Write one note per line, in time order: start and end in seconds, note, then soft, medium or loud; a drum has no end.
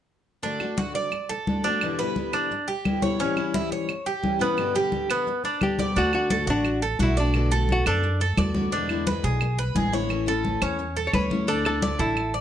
0.43 0.60 D3 medium
0.43 0.60 A3 medium
0.43 0.77 D4 medium
0.43 0.60 D4 medium
0.43 0.59 F#4 medium
0.43 high conga soft
0.60 0.76 A3 soft
0.60 0.77 D4 medium
0.60 0.77 F#4 medium
0.60 high conga soft
0.60 claves medium
0.77 1.10 D3 soft
0.77 1.10 A3 soft
0.77 1.11 D4 soft
0.77 0.95 F#4 medium
0.77 1.11 F#4 soft
0.77 high conga medium
0.95 1.29 D5 medium
0.95 high conga soft
1.11 muted steel-string acoustic guitar stroke medium
1.11 high conga soft
1.11 claves medium
1.29 1.63 A4 medium
1.29 high conga soft
1.47 1.64 D3 soft
1.47 1.64 A3 soft
1.47 1.64 D4 soft
1.47 1.63 F#4 soft
1.47 high conga medium
1.64 1.82 A3 soft
1.64 1.98 D4 medium
1.64 1.81 D4 medium
1.64 1.81 F#4 medium
1.64 high conga soft
1.81 1.98 E2 medium
1.81 1.99 B2 medium
1.81 1.99 D3 medium
1.81 1.99 G3 medium
1.81 1.98 B3 medium
1.81 1.98 E4 medium
1.81 high conga soft
1.81 claves medium
1.99 2.16 B2 soft
1.99 2.14 D3 medium
1.99 2.15 G3 medium
1.99 2.16 B3 medium
1.99 2.15 E4 medium
1.99 2.32 B4 medium
1.99 high conga soft
2.15 2.50 D3 soft
2.15 2.50 G3 soft
2.15 2.50 B3 soft
2.15 2.51 E4 soft
2.15 high conga soft
2.33 2.67 D4 medium
2.33 high conga soft
2.33 claves medium
2.51 muted steel-string acoustic guitar stroke medium
2.51 high conga soft
2.68 3.01 G4 medium
2.68 high conga soft
2.84 3.02 D3 soft
2.84 3.01 G3 soft
2.84 3.01 B3 soft
2.84 3.01 E4 soft
2.84 high conga medium
2.84 claves medium
3.02 3.19 B2 soft
3.02 3.19 D3 soft
3.02 3.19 G3 soft
3.02 3.19 B3 medium
3.02 3.19 E4 medium
3.02 3.19 C#5 medium
3.02 high conga medium
3.19 3.36 A2 medium
3.19 3.37 E3 medium
3.19 3.37 G3 medium
3.19 3.53 C#4 medium
3.19 3.36 C#4 medium
3.19 3.35 E4 medium
3.19 high conga soft
3.36 3.52 E3 soft
3.36 3.53 G3 medium
3.36 3.54 C#4 medium
3.36 3.53 E4 medium
3.36 high conga soft
3.36 claves medium
3.54 3.88 E3 soft
3.54 3.88 G3 soft
3.54 3.89 C#4 soft
3.54 3.71 E4 medium
3.54 3.89 E4 soft
3.54 high conga medium
3.72 4.05 C#5 medium
3.72 high conga soft
3.89 muted steel-string acoustic guitar stroke medium
3.89 high conga soft
3.89 claves medium
4.06 4.40 G4 medium
4.06 high conga soft
4.22 4.40 E3 soft
4.22 4.39 G3 soft
4.22 4.39 C#4 soft
4.22 4.38 E4 soft
4.22 high conga medium
4.39 4.58 E3 soft
4.39 4.57 G3 medium
4.39 4.75 B3 medium
4.39 4.57 C#4 medium
4.39 4.57 E4 medium
4.39 high conga soft
4.57 4.74 G2 medium
4.57 4.74 B2 medium
4.57 4.74 D3 medium
4.57 4.74 G3 medium
4.57 4.74 B3 medium
4.57 4.73 G4 medium
4.57 high conga soft
4.57 claves medium
4.75 4.92 B2 soft
4.75 4.90 D3 soft
4.75 4.91 G3 medium
4.75 4.92 B3 medium
4.75 4.92 G4 medium
4.75 5.09 G4 medium
4.75 high conga soft
4.92 5.26 D3 soft
4.92 5.26 G3 soft
4.92 5.27 B3 soft
4.92 5.27 G4 soft
4.92 high conga medium
5.10 5.44 B3 medium
5.10 high conga soft
5.10 claves medium
5.27 muted steel-string acoustic guitar stroke soft
5.27 high conga soft
5.44 5.78 D4 medium
5.44 high conga soft
5.61 5.78 D3 soft
5.61 5.78 G3 soft
5.61 5.78 B3 soft
5.61 5.97 G4 medium
5.61 5.77 G4 soft
5.61 high conga medium
5.61 claves medium
5.79 5.96 B2 soft
5.79 5.95 D3 soft
5.79 5.96 G3 medium
5.79 5.96 B3 medium
5.79 5.95 G4 medium
5.79 5.96 D5 medium
5.79 high conga medium
5.96 6.44 D2 medium
5.96 6.13 D3 medium
5.96 6.13 A3 medium
5.96 6.30 D4 medium
5.96 6.13 D4 medium
5.96 6.12 F#4 medium
5.96 6.13 F#4 medium
5.96 high conga soft
6.13 6.30 A3 medium
6.13 6.30 D4 medium
6.13 6.30 F#4 medium
6.13 6.50 F#4 medium
6.13 high conga soft
6.13 claves medium
6.30 6.64 D3 soft
6.30 6.64 A3 soft
6.30 6.65 D4 soft
6.30 6.65 F#4 soft
6.30 6.47 A4 medium
6.30 high conga medium
6.47 6.96 A1 medium
6.47 6.81 D4 medium
6.47 6.81 F#4 medium
6.47 high conga soft
6.65 muted steel-string acoustic guitar stroke medium
6.65 high conga soft
6.65 claves medium
6.82 6.99 A4 medium
6.82 high conga soft
6.99 7.80 B1 medium
6.99 7.16 D3 soft
6.99 7.17 A3 medium
6.99 7.17 D4 soft
6.99 7.19 E4 medium
6.99 7.17 F#4 medium
6.99 7.16 F#4 soft
6.99 high conga medium
7.17 7.34 A3 soft
7.17 7.34 D4 medium
7.17 7.50 D4 medium
7.17 7.33 F#4 medium
7.17 7.50 D5 medium
7.17 high conga soft
7.34 7.51 B2 medium
7.34 7.51 D3 medium
7.34 7.51 A3 medium
7.34 7.51 B3 medium
7.34 7.50 F#4 medium
7.34 high conga soft
7.34 claves medium
7.51 7.67 D3 medium
7.51 7.68 A3 medium
7.51 7.68 B3 medium
7.51 7.68 F#4 medium
7.51 7.85 A4 medium
7.51 high conga soft
7.68 8.02 D3 soft
7.68 8.03 A3 soft
7.68 8.03 B3 medium
7.68 8.03 F#4 medium
7.68 high conga medium
7.72 7.87 F#4 medium
7.86 8.34 F#2 medium
7.86 8.20 D4 medium
7.86 8.51 A4 medium
7.86 high conga soft
7.86 claves medium
8.03 muted steel-string acoustic guitar stroke medium
8.03 high conga soft
8.20 8.37 A4 medium
8.20 high conga soft
8.37 9.18 E2 medium
8.37 8.54 D3 soft
8.37 8.54 A3 medium
8.37 8.54 B3 soft
8.37 8.53 F#4 medium
8.37 8.71 D5 medium
8.37 high conga medium
8.37 claves medium
8.54 8.71 D3 soft
8.54 8.72 A3 medium
8.54 8.72 B3 medium
8.54 8.71 F#4 medium
8.54 high conga medium
8.72 8.88 B2 medium
8.72 8.89 D3 medium
8.72 8.89 G#3 medium
8.72 8.89 B3 medium
8.72 9.06 D4 medium
8.72 8.88 E4 medium
8.72 high conga soft
8.89 9.06 D3 medium
8.89 9.06 G#3 medium
8.89 9.06 B3 medium
8.89 9.06 E4 medium
8.89 high conga soft
8.89 claves medium
9.07 9.40 D3 soft
9.07 9.41 G#3 soft
9.07 9.41 B3 soft
9.07 9.41 E4 medium
9.07 9.23 B4 medium
9.07 high conga medium
9.23 9.72 B1 medium
9.23 9.57 G#4 medium
9.23 high conga soft
9.41 muted steel-string acoustic guitar stroke medium
9.41 high conga soft
9.41 claves medium
9.58 9.75 B4 medium
9.58 high conga soft
9.75 10.56 A1 medium
9.75 9.92 D3 soft
9.75 9.92 G#3 soft
9.75 9.92 B3 medium
9.75 9.91 E4 soft
9.75 9.92 G#4 medium
9.75 high conga medium
9.92 10.08 D3 soft
9.92 10.09 G#3 medium
9.92 10.10 B3 medium
9.92 10.09 E4 medium
9.92 10.26 C#5 medium
9.92 high conga soft
10.09 10.26 E3 medium
10.09 10.26 A3 medium
10.09 10.26 C#4 medium
10.09 10.25 E4 medium
10.09 high conga soft
10.09 claves medium
10.26 10.43 A3 medium
10.26 10.43 C#4 medium
10.26 10.43 E4 medium
10.26 10.61 A4 medium
10.26 high conga soft
10.43 10.77 E3 soft
10.43 10.78 A3 soft
10.43 10.78 C#4 soft
10.43 10.78 E4 soft
10.43 high conga medium
10.62 11.10 E2 medium
10.62 10.95 C#4 medium
10.62 high conga soft
10.62 claves medium
10.79 muted steel-string acoustic guitar stroke medium
10.79 high conga soft
10.97 11.13 A4 medium
10.97 high conga soft
11.07 11.14 C#5 medium
11.13 11.94 D2 medium
11.13 11.30 E3 soft
11.13 11.30 A3 soft
11.13 11.30 C#4 soft
11.13 11.29 E4 medium
11.13 11.48 B4 medium
11.13 11.47 C#5 medium
11.13 high conga medium
11.13 claves medium
11.30 11.47 A3 soft
11.30 11.47 C#4 medium
11.30 11.47 E4 medium
11.30 high conga medium
11.47 11.64 D3 medium
11.47 11.64 A3 medium
11.47 11.81 D4 medium
11.47 11.65 D4 medium
11.47 11.64 E4 medium
11.47 11.64 A4 medium
11.47 high conga soft
11.65 11.82 A3 medium
11.65 11.82 D4 medium
11.65 11.81 E4 medium
11.65 11.98 A4 medium
11.65 high conga soft
11.65 claves medium
11.82 12.15 D3 soft
11.82 12.15 A3 soft
11.82 12.16 D4 soft
11.82 12.16 E4 medium
11.82 11.99 D5 medium
11.82 high conga medium
11.99 12.41 A1 medium
11.99 12.32 E4 medium
11.99 12.33 A4 medium
11.99 high conga soft
12.17 muted steel-string acoustic guitar stroke medium
12.17 high conga soft
12.17 claves medium
12.34 12.41 D5 medium
12.34 high conga soft